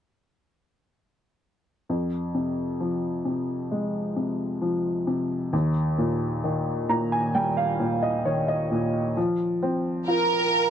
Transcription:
1.89 upright piano F2
2.35 upright piano C3
2.80 upright piano F3
3.25 upright piano C3
3.71 upright piano G#3
4.16 upright piano C3
4.62 upright piano F3
5.07 upright piano C3
5.53 upright piano D#2
5.98 upright piano A#2
6.44 upright piano D#3
6.89 upright piano A#2 A#5
7.12 upright piano G#5
7.35 upright piano G3 G5
7.57 upright piano F5
7.80 upright piano A#2
8.03 upright piano D#5
8.25 upright piano D#3 C#5
8.48 upright piano D#5
8.71 upright piano A#2
9.17 upright piano F3
9.63 upright piano C4
10.08 upright piano F4, violin section A#4

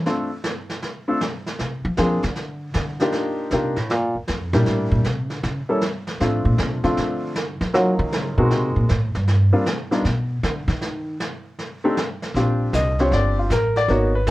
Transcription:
0.06 upright piano A3 C4 D4 F4 A4, brush sweep, snare
0.44 snare
0.70 snare
0.82 brush sweep, snare
1.08 upright piano A3 C4 D4 F4 A4
1.21 snare
1.46 snare
1.59 upright bass C3, brush sweep, snare
1.85 upright bass F3
1.97 upright bass F3, upright piano A#3 C4 D4 F4 G#4, snare
2.23 upright bass D3, snare
2.36 brush sweep, snare
2.74 upright bass D3, snare
3.00 upright piano A#3 D4 D#4 F4 G4, snare
3.12 brush sweep, snare
3.51 upright bass C3, upright piano A#3 D4 D#4 F4 G4, snare
3.76 upright bass A2, snare
3.90 upright bass A#2, brush sweep, snare
4.15 upright bass D2
4.28 upright bass F2, snare
4.53 upright bass A#2, upright piano G3 A#3 D4 E4 G4, snare
4.66 upright bass A2, brush sweep, snare
4.92 upright bass A#2
5.05 upright bass C3, snare
5.30 upright bass D3, snare
5.43 upright bass C#3, brush sweep, snare
5.69 upright piano G3 A#3 C#4 E4 A4
5.81 snare
6.07 snare
6.20 upright bass A2, upright piano F3 A3 C4 D4 F4, brush sweep, snare
6.45 upright bass A#2
6.58 upright bass C3, snare
6.84 upright bass C#3, upright piano F3 A3 C4 D4 F4, snare
6.97 upright bass D3, brush sweep, snare
7.36 snare
7.61 upright bass F3, snare
7.74 upright piano F#3 A#3 C#4 D#4 F4, upright bass F#3, brush sweep, snare
7.99 upright bass D#3
8.12 upright bass C#3, snare
8.38 upright bass B2, upright piano G#3 A#3 C4 D#4 F#4
8.51 upright bass C3, brush sweep, snare
8.76 upright bass A#2
8.89 upright bass A2, snare
9.15 upright bass G2, snare
9.27 brush sweep, snare
9.53 upright piano G3 A#3 C4 D4 F4
9.66 snare
9.91 upright piano G3 B3 D4 D#4 F4, snare
10.05 upright bass B2, brush sweep, snare
10.43 upright bass D3, snare
10.68 upright bass D#3, snare
10.81 brush sweep, snare
11.20 snare
11.59 brush sweep, snare
11.84 upright piano A3 C4 D4 D#4 G4
11.97 snare
12.22 snare
12.34 upright bass A#1, upright piano C4 D4 F4 G4, brush sweep, kick, snare
12.73 upright bass C2, upright piano D#5, kick, snare, hi-hat pedal
12.99 upright piano C4 D4 F4 G4 C#5, snare
13.11 upright bass G1, upright piano D5, brush sweep, kick, snare
13.39 upright piano F4
13.50 upright bass A1, upright piano A#4, kick, snare, hi-hat pedal
13.76 upright piano D5, snare
13.88 upright bass G#1, upright piano A#3 B3 D#4 F#4 C#5, brush sweep, kick, snare
14.15 upright piano B4
14.27 upright bass B1, kick, snare, hi-hat pedal

